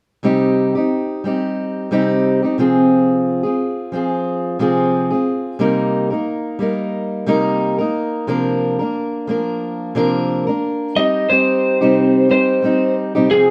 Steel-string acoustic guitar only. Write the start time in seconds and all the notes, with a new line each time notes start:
0.23 C3 G3 C4 D#4 G4
0.75 C4 D#4 G4
1.24 G3 C4 D#4 G4
1.91 C3 G3 C4 D#4 G4
2.43 C4 D#4 G4
2.58 C3 F3 C4 F4 G#4
3.43 C4 F4 G#4
3.92 F3 C4 F4 G#4
4.59 C3 F3 C4 F4 G#4
5.11 C4 F4 G#4
5.59 C3 G3 A#3 D#4 A#4
6.10 A#3 D#4 A#4
6.59 G3 A#3 D#4 A#4
7.26 C3 G3 A#3 D#4 A#4
7.79 A#3 D#4 A#4
8.27 C3 F3 A#3 D4 A#4
8.79 A#3 D4 A#4
9.27 F3 A#3 D4 A#4
9.95 C3 F3 A#3 D4 A#4
10.47 A#3 D4 A#4
10.95 G3 C4 D#4 G4
11.29 G3 C4 D#4 G4
11.81 C3 G3 C4 D#4 G4
12.29 G3 C4 D#4 G4
12.62 G3 C4 D#4 G4
13.15 C3 G3 C4 D#4 G4
13.30 C3 F3 C4 F4 G#4